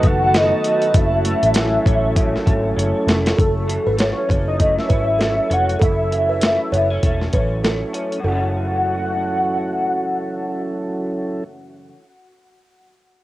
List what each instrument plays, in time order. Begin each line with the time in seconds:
Already playing: clean electric guitar B2 F#3 D#4, tonewheel organ D#3 F#3 A3 B3 A4, ambient pad F#4 B4 F#5 A5
0.03 picked electric bass F#1, clean electric guitar A3, soft synth lead F#5, kick, closed hi-hat
0.34 clean electric guitar D#4, soft synth lead D#5, snare, closed hi-hat
0.64 clean electric guitar A3, closed hi-hat
0.82 closed hi-hat
0.93 picked electric bass F#1, tonewheel organ F#3 A3 C#4 E4, ambient pad C#5 E5, kick, closed hi-hat
0.97 tonewheel organ A4, soft synth lead E5
1.25 clean electric guitar A3, closed hi-hat
1.43 picked electric bass A1, closed hi-hat
1.54 clean electric guitar E3, snare, closed hi-hat
1.86 picked electric bass A1, clean electric guitar C#4, kick, closed hi-hat
2.16 clean electric guitar C#3, kick, closed hi-hat
2.36 snare
2.46 picked electric bass G#1, clean electric guitar A3, kick, closed hi-hat
2.76 picked electric bass F#1, clean electric guitar C#4, closed hi-hat
3.07 picked electric bass F1, clean electric guitar A3, snare, closed hi-hat
3.26 snare, closed hi-hat
3.36 picked electric bass F#1, tonewheel organ F#3 C#4 E4, kalimba A4, soft synth lead A4, kick, closed hi-hat
3.41 tonewheel organ A4
3.68 clean electric guitar E3, closed hi-hat
3.86 picked electric bass G#1, kalimba B4
3.97 clean electric guitar A3, soft synth lead C#5, snare, closed hi-hat
4.17 soft synth lead C#5
4.29 picked electric bass F#1, clean electric guitar C#4, kalimba C#5, kick, closed hi-hat
4.47 soft synth lead D#5
4.59 clean electric guitar A3, kick, closed hi-hat
4.78 soft synth lead E5, snare
4.89 picked electric bass G#1, clean electric guitar C#4, kalimba B4, kick, closed hi-hat
5.19 clean electric guitar A3, kalimba A4, snare, closed hi-hat
5.50 picked electric bass F1, clean electric guitar C#4, soft synth lead F#5, closed hi-hat
5.69 closed hi-hat
5.79 picked electric bass F#1, clean electric guitar F#2, kalimba A4, soft synth lead E5, kick, closed hi-hat
6.11 clean electric guitar E3, closed hi-hat
6.29 kalimba B4
6.41 clean electric guitar A3, snare, closed hi-hat
6.72 picked electric bass F#1, clean electric guitar B3, kalimba C#5, closed hi-hat
6.90 clean electric guitar C#4
7.03 picked electric bass E1, clean electric guitar A3, kick, closed hi-hat
7.22 snare
7.33 picked electric bass A1, clean electric guitar C#4, kalimba B4, kick, closed hi-hat
7.64 clean electric guitar A3, kalimba A4, snare, closed hi-hat
7.93 clean electric guitar C#4, closed hi-hat
8.12 closed hi-hat
8.20 clean electric guitar F#2
8.24 picked electric bass F#1, clean electric guitar C#3 E3, tonewheel organ F#3 C#4 E4 A4, kalimba A4, soft synth lead F#5
8.32 clean electric guitar A3 C#4